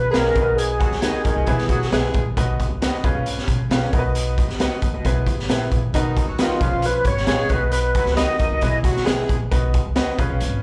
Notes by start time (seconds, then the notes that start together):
Already playing: B4
0.10 B1 G#3 C#4 F4 G#4 A#4 B4, snare, closed hi-hat
0.15 G#4 B4 F5
0.36 B1 B3 D#4 F#4 A#4, kick, closed hi-hat
0.42 B4
0.56 G#4, closed hi-hat
0.79 F#3 F#4, kick, closed hi-hat
0.91 C#2, snare
1.02 D#3 B3 D#4 F#4 B4 D#5, snare, closed hi-hat
1.24 D#2 D#3 D#4, kick, closed hi-hat
1.36 C#2 F#4 B4 D#5
1.47 B1 E3 B3 E4 G#4 B4, kick, closed hi-hat
1.58 snare
1.69 B2 F#3 F#4, kick, closed hi-hat
1.82 snare
1.92 B1 G#3 B3 E4 G#4 B4 E5, snare, closed hi-hat
2.14 A#1, kick, closed hi-hat
2.37 B1 B3 D#4 F#4 B4, kick, closed hi-hat
2.60 kick, closed hi-hat
2.70 C#2
2.82 B3 D#4 F#4 B4 D#5, snare, closed hi-hat
3.04 B1 C#4 F4 G#4 B4, kick, closed hi-hat
3.15 B1 G#4 B4 F5
3.26 G#1, closed hi-hat
3.38 snare
3.48 B2, kick, closed hi-hat
3.70 B1 C#4 F4 G#4 B4 F5, snare, closed hi-hat
3.93 B1 B3 D#4 F#4 A#4, kick, closed hi-hat
3.99 B4
4.15 closed hi-hat
4.38 kick, closed hi-hat
4.49 C#2, snare
4.60 B3 D#4 F#4 B4 D#5, snare, closed hi-hat
4.82 D#2, kick, closed hi-hat
4.93 C#2 F#4 B4 D#5
5.05 B1 B3 E4 G#4 B4, kick, closed hi-hat
5.27 G#1, kick, closed hi-hat
5.39 snare
5.48 A#1 B3 E4 G#4 B4 E5, snare, closed hi-hat
5.72 A#1, kick, closed hi-hat
5.94 B1 D#3 B3 D#4 F#4 B4, kick, closed hi-hat
6.17 kick, closed hi-hat
6.27 C#2 F#3 F#4
6.38 D#3 B3 D#4 F4 F#4 B4 D#5, snare, closed hi-hat
6.61 B1 F3 C#4 F4 G#4 B4, kick, closed hi-hat
6.72 B1 G#4 B4 F5
6.82 B4, closed hi-hat
7.05 G#1 C#5, kick, closed hi-hat
7.17 snare
7.27 A#1 G#3 C#4 F4 G#4 B4 F5, snare, closed hi-hat
7.49 B1 B3 D#4 F#4 B4, kick, closed hi-hat
7.72 B4, closed hi-hat
7.95 F#3 F#4, kick, closed hi-hat
8.05 C#2, snare
8.16 D#3 B3 D#4 F#4 B4 D#5, snare, closed hi-hat
8.39 D#2 D#3 D#4, kick, closed hi-hat
8.50 C#2 F#4 B4 D#5
8.61 B1 E3 B3 E4 G#4 B4, kick, closed hi-hat
8.84 B2 F#3 F#4, kick, closed hi-hat
8.97 snare
9.05 B1 G#3 B3 E4 G#4 B4 E5, snare, closed hi-hat
9.29 A#1, kick, closed hi-hat
9.51 B1 B3 D#4 F#4 B4, kick, closed hi-hat
9.74 kick, closed hi-hat
9.85 C#2
9.96 B3 D#4 F#4 B4 D#5, snare, closed hi-hat
10.18 B1 C#4 F4 G#4 B4, kick, closed hi-hat
10.30 B1 G#4 B4 F5
10.40 G#1, closed hi-hat